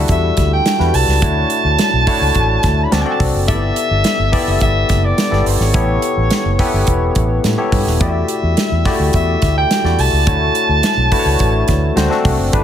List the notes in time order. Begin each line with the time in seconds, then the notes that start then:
Already playing: G3 D4 E4 F#4 A4
0.08 E2 E5, kick, closed hi-hat
0.37 D2, kick, snare, closed hi-hat
0.53 G5
0.66 snare, closed hi-hat
0.79 E2 G3 D4 E4 F#4 B4, snare
0.94 C2 A5, open hi-hat
1.08 C#2, snare
1.22 D2 A3 D4 E4 F#4 C#5, kick, closed hi-hat
1.50 closed hi-hat
1.65 D2
1.79 snare, closed hi-hat
1.93 B1
2.07 A3 D4 E4 F#4 C#5, kick, open hi-hat
2.21 C#2
2.35 A1, kick, closed hi-hat
2.63 D2, kick, snare, closed hi-hat
2.84 B5
2.91 D2 C4 D4 F#4 A4 D5 A5, snare, closed hi-hat
3.02 C4 D4 F#4 A4 D5 G5
3.12 A5
3.20 C2, kick, open hi-hat
3.35 F#1
3.48 G1 A3 E4 G4 A4 D5 E5, kick, closed hi-hat
3.54 B3
3.76 closed hi-hat
3.91 G1
4.04 snare, closed hi-hat
4.19 G1
4.32 B3 E4 G4 A4 D5, kick, open hi-hat
4.47 F#1
4.60 G1 E5, kick, closed hi-hat
4.89 F#1, kick, snare, closed hi-hat
5.05 D5
5.18 snare, closed hi-hat
5.31 G1 B3 E4 G4 A4 D5, snare
5.46 G1 C#5, open hi-hat
5.60 G#1, snare
5.74 A1 B3 E4 G4 A4 C#5, kick, closed hi-hat
6.02 closed hi-hat
6.17 A1
6.30 snare, closed hi-hat
6.45 F#1
6.59 B3 E4 G4 A4 B4, kick, open hi-hat
6.74 G1
6.87 E1, kick, closed hi-hat
7.15 A1, kick, closed hi-hat
7.44 A2, snare, closed hi-hat
7.58 B3 E4 G4 A4 C#5
7.72 G2, kick, open hi-hat
7.87 D#1, snare
8.00 E2 A3 E4 F#4 G4 D5 E5, kick, closed hi-hat
8.28 closed hi-hat
8.43 E2
8.57 snare, closed hi-hat
8.72 E2
8.85 A3 E4 F#4 G4 D5, kick, snare, open hi-hat
9.00 D2
9.13 E2 E5, kick, closed hi-hat
9.42 D2, kick, snare, closed hi-hat
9.58 G5
9.71 snare, closed hi-hat
9.84 E2 A3 E4 F#4 G4 D5, snare
9.99 C2 A5, open hi-hat
10.13 C#2
10.27 D2 A3 D4 E4 F#4 C#5, kick, closed hi-hat
10.55 closed hi-hat
10.69 D2
10.83 snare, closed hi-hat
10.97 B1
11.11 A3 D4 E4 F#4 B4, kick, open hi-hat
11.19 C#5
11.25 C#2
11.39 A1, kick, closed hi-hat
11.68 D2, kick, snare, closed hi-hat
11.96 D2 A3 C4 D4 F#4 C5, snare, closed hi-hat
12.10 A3 C4 D4 F#4 A4, snare
12.25 C2, kick, open hi-hat
12.39 F#1
12.53 G1 A3 D4 E4 G4 B4, kick, closed hi-hat